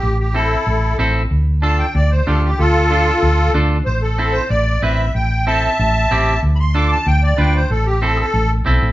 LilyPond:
<<
  \new Staff \with { instrumentName = "Accordion" } { \time 4/4 \key a \minor \tempo 4 = 188 g'8 g'8 <e' a'>2 r4 | r4 a''8 g''8 d''8 c''8 a'8 g'8 | <f' a'>2. r4 | c''8 a'4 c''8 d''4 e''4 |
g''4 <e'' a''>2. | r8 <b'' c'''>8 d'''8 a''8 g''8 d''8 g''8 c''8 | a'8 g'8 a'8 <gis' a'>4 r4. | }
  \new Staff \with { instrumentName = "Clean electric guitar" } { \time 4/4 \key a \minor r4 <c' e' a'>8 r4. <c' e' a'>8 r8 | r4 <d' f' a'>8 r4. <d' f' g'>8 r8 | r4 <d' f' a'>8 r4. <d' f' a'>8 r8 | r4 <c' e' a'>8 r4. <c' e' b'>8 r8 |
r4 <c' e' a'>8 r4. <c' e' g'>8 r8 | r4 <d' f' a'>8 r4. <d' f' b'>8 r8 | r4 <c' e' a'>8 r4. <c' e' a'>8 r8 | }
  \new Staff \with { instrumentName = "Fingered electric bass" } { \clef bass \time 4/4 \key a \minor a,,2 a,,4 a,,4 | d,2 d,4 d,4 | d,2 d,4 d,4 | a,,2 a,,4 a,,4 |
a,,2 a,,4 a,,4 | d,2 d,4 d,4 | a,,2 a,,4 b,,8 a,,8 | }
>>